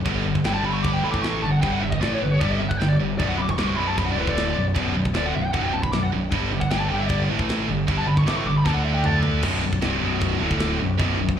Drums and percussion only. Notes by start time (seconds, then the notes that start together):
0.06 kick, crash
0.35 kick
0.44 snare, crash
0.84 kick, crash
1.14 kick
1.24 snare, crash
1.62 kick, crash
1.92 kick
2.02 snare, crash
2.41 kick, crash
2.71 kick
2.81 snare, crash
3.20 kick, crash
3.49 kick
3.58 snare, crash
3.98 kick, crash
4.27 kick
4.37 snare, crash
4.75 kick, crash
5.05 kick
5.14 snare, crash
5.53 kick, crash
5.83 kick
5.92 snare, crash
6.31 kick, crash
6.61 kick
6.71 snare, crash
7.09 kick, crash
7.39 kick
7.49 snare, crash
7.88 kick, crash
8.17 kick
8.27 snare, crash
8.66 kick, snare
9.04 mid tom
9.23 floor tom
9.43 kick, crash
9.73 kick
9.81 snare, crash
10.21 kick, crash
10.51 kick
10.60 snare, crash
10.99 kick, crash
11.29 kick